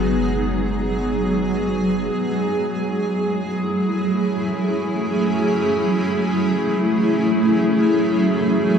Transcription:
0.00 2.09 F#1 medium
0.00 8.79 F#3 medium
0.00 2.14 G#3 medium
0.00 2.13 B3 medium
0.00 2.14 D#4 medium
0.00 8.79 G#4 medium
2.55 8.79 E4 medium
2.76 8.79 A3 medium
3.54 8.79 C#4 medium

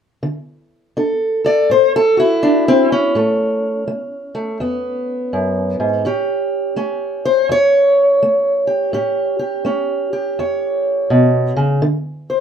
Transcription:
0.23 0.90 D3 medium
0.97 1.64 D4 medium
0.97 1.43 A4 soft
1.44 1.70 A4 soft
1.44 1.69 D5 medium
1.70 2.37 A2 medium
1.70 1.94 C5 medium
1.96 2.19 A4 medium
2.17 3.15 E4 medium
2.17 3.12 F#4 soft
2.43 2.66 D4 medium
2.68 2.91 C4 medium
2.92 6.05 C#4 medium
3.15 3.82 A2 medium
3.15 3.86 A3 soft
3.88 4.34 A3 medium
4.35 4.57 A3 soft
4.60 5.27 E2 medium
4.60 6.05 B3 soft
5.33 5.79 F#2 medium
5.80 6.05 G#2 medium
6.05 6.72 A2 medium
6.05 6.77 C#4 soft
6.05 8.66 G4 soft
6.76 7.44 A3 medium
6.76 8.91 C#4 soft
7.25 7.50 C5 medium
7.49 8.16 E2 medium
7.49 9.67 C#5 loud
8.23 8.89 A3 medium
8.67 8.90 G4 soft
8.93 9.61 A2 medium
8.93 9.65 C#4 soft
8.93 9.38 G4 soft
9.39 10.12 G4 soft
9.65 10.32 A3 medium
9.65 11.79 C#4 soft
10.13 11.80 G4 soft
10.39 11.06 E2 medium
10.39 11.80 C#5 soft
11.10 11.56 B2 medium
11.56 11.83 C#3 medium
11.82 12.40 D3 medium
12.30 12.40 C5 soft

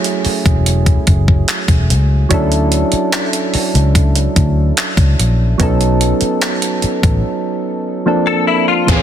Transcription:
0.00 2.26 F#3 medium
0.00 2.26 A3 medium
0.00 2.27 C#4 medium
0.00 2.27 E4 medium
0.00 2.28 G#4 medium
0.04 closed hi-hat medium
0.25 muted fingered electric bass stroke soft
0.25 open hi-hat soft
0.46 0.97 E1 medium
0.46 kick loud
0.46 closed hi-hat soft
0.66 closed hi-hat medium
0.86 kick loud
0.86 closed hi-hat medium
1.07 1.42 F#1 medium
1.07 kick medium
1.07 closed hi-hat medium
1.28 kick medium
1.48 clap loud
1.48 closed hi-hat medium
1.68 1.92 E1 medium
1.68 kick medium
1.68 closed hi-hat medium
1.90 2.24 C#2 medium
1.90 closed hi-hat medium
2.29 2.82 D2 loud
2.29 5.55 F#3 medium
2.29 5.55 C#4 medium
2.29 5.56 D4 medium
2.29 5.56 E4 medium
2.29 kick loud
2.29 closed hi-hat medium
2.34 5.57 A4 medium
2.52 closed hi-hat medium
2.72 closed hi-hat medium
2.92 muted fingered electric bass stroke soft
2.92 closed hi-hat medium
3.12 clap loud
3.12 closed hi-hat medium
3.33 closed hi-hat medium
3.54 muted fingered electric bass stroke medium
3.54 open hi-hat soft
3.75 4.26 C#2 loud
3.75 closed hi-hat soft
3.95 kick medium
3.95 closed hi-hat medium
4.16 closed hi-hat medium
4.36 4.71 D2 loud
4.36 kick medium
4.36 closed hi-hat medium
4.77 clap loud
4.77 closed hi-hat medium
4.97 5.15 C#2 loud
4.97 kick loud
4.97 closed hi-hat medium
5.19 5.53 A#1 medium
5.19 closed hi-hat medium
5.58 6.11 B1 loud
5.58 8.01 F#3 medium
5.58 8.02 B3 medium
5.58 8.02 C#4 medium
5.58 8.03 D#4 medium
5.58 kick loud
5.58 closed hi-hat medium
5.63 8.04 A4 medium
5.81 closed hi-hat medium
6.01 closed hi-hat medium
6.21 muted fingered electric bass stroke soft
6.21 closed hi-hat medium
6.42 clap loud
6.42 closed hi-hat medium
6.62 closed hi-hat medium
6.82 muted fingered electric bass stroke soft
6.82 closed hi-hat soft
7.03 7.21 A1 medium
7.03 kick loud
7.03 closed hi-hat soft
8.06 8.88 F3 medium
8.06 8.88 A#3 medium
8.06 8.89 C4 medium
8.06 8.89 D4 medium
8.06 8.89 A4 medium
8.27 8.46 A4 medium
8.47 8.67 E4 medium
8.68 9.02 F4 medium
8.86 9.02 A1 medium
8.86 9.02 E3 medium
8.86 9.02 A3 medium
8.86 9.02 B3 medium
8.86 8.96 C4 medium
8.86 kick loud
8.86 closed hi-hat medium
8.86 downlifter medium
8.91 9.02 G#4 medium
8.96 9.02 C#4 medium

